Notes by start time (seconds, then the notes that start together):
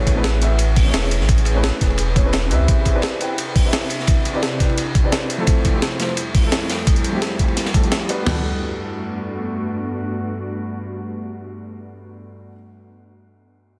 Already playing: A1 A3 C#4 E4 G#4 B4 C#5
0.07 kick, closed hi-hat, ride
0.14 A3 C#4 E4 G#4 B4
0.24 snare, closed hi-hat, ride
0.34 ride
0.40 A3 C#4 E4 G#4 E5, closed hi-hat, ride
0.59 closed hi-hat, ride
0.76 kick, closed hi-hat, open hi-hat
0.83 A3 C#4 E4
0.87 G#4 C#5
0.94 E1, snare, closed hi-hat, ride
1.11 closed hi-hat, ride
1.20 A1, snare
1.29 kick, closed hi-hat, ride
1.38 closed hi-hat
1.45 closed hi-hat, ride
1.54 A3 C#4 E4 G#4 B4
1.64 snare, closed hi-hat, ride
1.73 ride
1.80 E1 A3 C#4 E4 G#4 B4, kick, snare, closed hi-hat, ride
1.90 ride
1.98 closed hi-hat, ride
2.15 A3 C#4 E4 G#4 C#5, kick, closed hi-hat, ride
2.24 A3 C#4 E4 G#4 B4
2.33 snare, closed hi-hat, ride
2.42 ride
2.48 C#2 C4 E4 G4, closed hi-hat, ride
2.52 B4 E5
2.60 C#2
2.68 C3 D4 E4, kick, closed hi-hat, ride
2.85 kick, closed hi-hat, ride
2.93 C4 E4 G4 B4 D5
3.02 snare, closed hi-hat, ride
3.12 ride
3.19 C4 E4 G4 B4 G5, closed hi-hat, ride
3.38 closed hi-hat, ride
3.56 kick, closed hi-hat, open hi-hat
3.62 C4 E4 G4 B4
3.67 E5
3.73 snare, closed hi-hat, ride
3.90 closed hi-hat, ride
4.00 snare
4.07 kick, closed hi-hat, ride
4.25 closed hi-hat, ride
4.33 C4 E4 G4 B4 D5
4.42 snare, closed hi-hat, ride
4.52 ride
4.59 C4 E4 G4 B4 D5, kick, snare, closed hi-hat, ride
4.69 ride
4.78 closed hi-hat, ride
4.95 kick, closed hi-hat, ride
5.03 C4 E4 G4 B4 D5
5.12 snare, closed hi-hat, ride
5.30 F2 G3 A3, closed hi-hat, ride
5.38 F3 A3 C4 E4 A4
5.47 kick, closed hi-hat, ride
5.65 kick, closed hi-hat, ride
5.73 F3 A3 C4 E4 G4
5.82 snare, closed hi-hat, ride
5.92 ride
5.99 F3 A3 C4 E4 C5, snare, closed hi-hat, ride
6.09 ride
6.17 closed hi-hat, ride
6.35 kick, closed hi-hat, open hi-hat
6.41 F3 A3 C4
6.45 E4 A4
6.52 snare, closed hi-hat, ride
6.70 snare, closed hi-hat, ride
6.78 ride
6.87 kick, closed hi-hat, ride
6.96 closed hi-hat
7.04 closed hi-hat, ride
7.12 F3 A3 C4 E4 G4
7.22 snare, closed hi-hat, ride
7.31 ride
7.38 F3 A3 C4 E4 G4, kick, closed hi-hat, ride
7.48 ride
7.57 snare, closed hi-hat, ride
7.66 snare, ride
7.73 F3 A3 C4 E4 A4, kick, closed hi-hat, ride
7.82 F3 A3 C4 E4 G4, closed hi-hat
7.92 snare, closed hi-hat, ride
8.08 G3 B3 D4 F#4 B4, closed hi-hat, ride
8.22 G2 G3 A3 B3 D4
8.26 B3 F#4 A4, snare, floor tom, crash